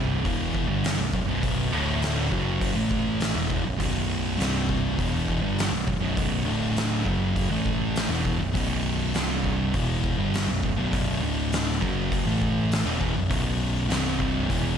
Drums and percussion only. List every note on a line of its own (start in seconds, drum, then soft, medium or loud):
0.25 kick medium
0.25 open hi-hat soft
0.55 kick medium
0.84 snare loud
0.84 open hi-hat medium
1.14 kick loud
1.43 kick loud
1.43 open hi-hat medium
2.02 snare loud
2.02 open hi-hat medium
2.32 kick medium
2.61 kick loud
2.61 open hi-hat medium
2.91 kick medium
3.20 snare loud
3.20 open hi-hat medium
3.50 kick loud
3.80 kick loud
3.80 open hi-hat medium
4.40 snare loud
4.40 open hi-hat medium
4.69 kick medium
4.99 kick loud
4.99 open hi-hat medium
5.28 kick medium
5.59 snare loud
5.59 open hi-hat medium
5.88 kick medium
6.17 kick loud
6.17 open hi-hat medium
6.76 snare loud
6.76 open hi-hat medium
7.06 kick medium
7.36 kick loud
7.36 open hi-hat medium
7.66 kick medium
7.96 snare loud
7.96 open hi-hat medium
8.25 kick medium
8.55 kick loud
8.55 open hi-hat medium
9.14 snare loud
9.14 open hi-hat soft
9.44 kick medium
9.74 kick loud
9.74 open hi-hat soft
10.04 kick medium
10.34 snare loud
10.34 open hi-hat soft
10.63 kick medium
10.93 kick loud
10.93 open hi-hat medium
11.52 snare loud
11.52 open hi-hat medium
11.82 kick medium
12.12 kick loud
12.12 open hi-hat medium
12.42 kick medium
12.72 snare loud
12.72 open hi-hat medium
13.01 kick medium
13.31 kick loud
13.31 open hi-hat medium
13.90 snare loud
13.90 open hi-hat medium
14.20 kick medium
14.50 kick loud
14.50 open hi-hat medium